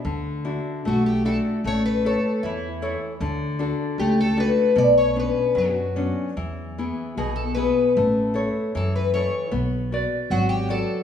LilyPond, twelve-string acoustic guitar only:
\new Staff \with { instrumentName = "Twelve-string acoustic guitar" } { \time 2/4 \key d \major \tempo 4 = 76 r4 fis'16 g'16 a'8 | cis''16 b'16 a'8 e'8. r16 | r4 g'16 a'16 b'8 | d''16 cis''16 b'8 fis'8. r16 |
r4 gis'16 a'16 b'8 | r4 a'16 b'16 cis''8 | r4 fis'16 g'16 a'8 | }